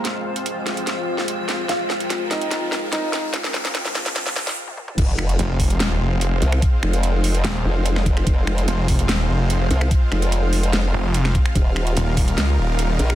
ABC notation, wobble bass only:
X:1
M:4/4
L:1/8
Q:1/4=146
K:Fm
V:1 name="Wobble bass" clef=bass
z8 | z8 | z8 | F,,,2 z4 z C,, |
z F,,,3 z F,,,3 | F,,,2 z4 z C,, | z F,,,3 F,,, z3 | E,,,2 z4 z B,,, |]